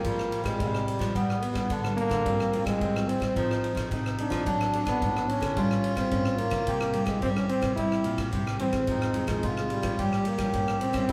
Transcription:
Already playing: G#3 A#3 C4 G4
0.04 F3 G3, kick, ride
0.19 cross-stick
0.32 ride
0.44 F3 G#3 C4 G4, kick, cross-stick, ride
0.60 C3, kick, ride
0.74 G#3 C4 G4, cross-stick
0.87 G3, ride
0.99 F3 G3 B3 D4, kick, cross-stick, ride
1.15 G2 G3 B3, kick, ride
1.30 cross-stick
1.42 B3, ride
1.54 G3 B3 D4, kick, cross-stick, ride
1.70 D3 D4, kick, ride
1.84 G3 B3 D4, cross-stick
1.97 A#3, ride
2.09 D3, kick, cross-stick, ride
2.25 G2 F3 G3 C4 F4, kick, ride
2.40 cross-stick
2.53 F3 C4 F4, ride
2.65 G3 G#3, kick, cross-stick, ride
2.81 G2 G3 C4, kick, ride
2.96 F3 C4 F4, cross-stick
3.08 C4, ride
3.20 G3, kick, cross-stick, ride
3.36 F3 C4 D#4 A4, kick, ride
3.51 cross-stick
3.64 ride
3.75 F3, kick, cross-stick, ride
3.91 C3 C4 D#4 A4, kick, ride
4.06 cross-stick
4.18 C4 D4 D#4 A4, ride
4.30 F3 C4 D4 A4, kick, cross-stick, ride
4.46 F#3 D4, kick, ride
4.61 cross-stick
4.73 C4 D4 A4, ride
4.85 F#3 B3, kick, cross-stick, ride
5.01 A2 F#3, kick, ride
5.15 C4 D4 A4, cross-stick
5.29 C#4, ride
5.41 D3, kick, cross-stick, ride
5.56 G2 F3 G3 A#3 C#4 F4, kick, ride
5.71 cross-stick
5.84 ride
5.95 G3 C4, kick, cross-stick, ride
6.11 G2 F3 A#3 C#4, kick, ride
6.25 cross-stick
6.38 F3 A#3 C#4, ride
6.50 C#3 G3 C4 E4, kick, cross-stick, ride
6.67 C3 G4, kick, ride
6.80 cross-stick
6.93 G3 C4 E4, ride
7.06 C3 G#3, kick, cross-stick, ride
7.22 G2 G3 C4, kick, ride
7.35 G3 C4 C#4 E4, cross-stick
7.49 C4, ride
7.62 C3, kick, cross-stick, ride
7.76 C3 G3 C4 E4, kick, ride
7.92 cross-stick
8.04 A#2, ride
8.18 kick, cross-stick, ride
8.32 G2 C3 G3 C4 E4, kick, ride
8.47 cross-stick
8.59 E3 G3 C4 E4, ride
8.73 D#3 G#3 C4, kick, cross-stick, ride
8.87 F2 F3 D#4, kick, ride
9.02 cross-stick
9.14 D#3 G#3 C4, ride
9.27 F3 G#3, kick, cross-stick, ride
9.43 C3 F4, kick, ride
9.57 D#3 G#3 C4, cross-stick
9.70 G3, ride
9.82 F3, kick, cross-stick, ride
9.98 G2 F3 G3 A#3 C#4 G4, kick, ride
10.12 cross-stick
10.25 A#3, ride
10.38 F3 G3 A#3 C#4, kick, cross-stick, ride
10.53 G2 F3 A#3 C#4, kick, ride
10.68 cross-stick
10.81 C4, ride
10.93 G3 C4 C#4 E4, kick, cross-stick, ride
11.09 E4, ride

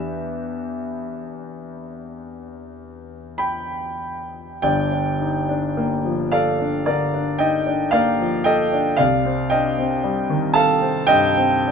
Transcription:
Already playing: E2 E3 B3 D4 G4 B4 E5
3.38 G5 B5
4.62 G1 G2 D5 G5
4.92 D4
5.21 D#4
5.49 D4
5.77 A#3
6.05 F3
6.32 A4 D5 F5
6.60 D4
6.86 D3 A#4 D5
7.14 D4
7.38 D#4 D#5 G5
7.67 D4
7.91 A#3 D5 F5
8.20 F3
8.44 A4 D#5 G5
8.73 D4
8.97 C2 D5 F5
9.25 C4
9.50 D4 D#5 G5
9.78 C4
10.03 G3
10.30 D#3
10.54 A4 F5 A5
10.82 C4
11.07 G2 D#5 G5
11.37 C4
11.67 D4

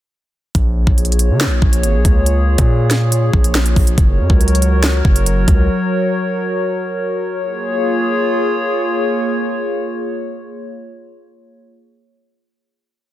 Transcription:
0.55 A#1 A#3 F4 G#4 C#5, kick, closed hi-hat
0.87 A#1, kick
0.98 closed hi-hat
1.05 closed hi-hat
1.12 closed hi-hat
1.19 closed hi-hat
1.30 C#3
1.41 snare, clap
1.46 A#1
1.62 A#1, kick
1.73 closed hi-hat
1.83 G#1, closed hi-hat
1.94 A#1
2.05 C#2, kick, closed hi-hat
2.26 closed hi-hat
2.58 A#2, kick, closed hi-hat
2.91 snare, closed hi-hat
3.12 closed hi-hat
3.33 A#1, kick
3.44 closed hi-hat
3.55 snare, clap
3.66 closed hi-hat
3.76 A#1, kick, open hi-hat
3.87 closed hi-hat
3.98 F#1 F#3 F#4 A#4 C#5, kick, closed hi-hat
4.19 F#2
4.30 C#2, kick
4.41 closed hi-hat
4.48 closed hi-hat
4.55 closed hi-hat
4.62 closed hi-hat
4.84 snare, clap
5.05 F#1, kick
5.16 closed hi-hat
5.26 closed hi-hat
5.48 C#2, kick, closed hi-hat
7.41 A#3 F4 G#4 C#5

